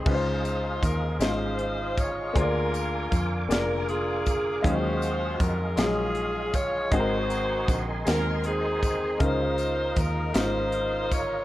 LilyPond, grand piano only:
\new Staff \with { instrumentName = "Grand piano" } { \time 6/8 \key des \major \tempo 4. = 52 <des aes des' ees' f' ces'' c''>4. <aes des' ees' f' c''>4. | <d bes d' f' aes' c'' d''>4. <bes d' f' aes' d''>4. | <ees ges aes des' ees' f''>4. <ges aes ees' f' aes'>4. | <aes, aes c' ees' ges' aes' bes'>4. <aes c' ees' ges' aes' bes'>4. |
<des aes des' ees' f' bes'>4. <aes des' ees' f' ees''>4. | }